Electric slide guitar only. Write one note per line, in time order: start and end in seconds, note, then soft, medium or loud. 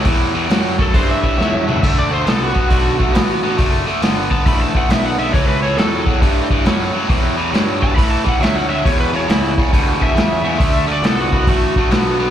0.82 0.95 A4 medium
0.96 1.09 C5 medium
1.11 1.95 E5 medium
1.99 2.12 D5 medium
2.13 2.27 C5 medium
2.28 2.41 A4 medium
2.43 3.70 F#4 medium
4.31 4.45 A5 medium
4.48 4.61 B5 medium
4.62 4.75 A5 medium
4.77 4.90 F#5 medium
4.91 5.04 E5 medium
5.06 5.19 F#5 medium
5.19 5.33 E5 medium
5.33 5.47 C#5 medium
5.48 5.62 B4 medium
5.62 5.77 C#5 medium
5.77 6.05 A4 loud
7.84 7.96 A5 medium
7.96 8.10 B5 medium
8.11 8.25 A5 medium
8.29 8.41 F#5 medium
8.42 8.55 E5 medium
8.55 8.69 F#5 medium
8.69 8.83 E5 medium
8.86 8.99 C#5 medium
9.00 9.13 B4 medium
9.16 9.29 C#5 medium
9.30 9.57 E4 medium
10.03 10.87 E5 loud
10.92 11.05 D5 medium
11.05 11.18 A4 medium
11.20 12.30 F#4 loud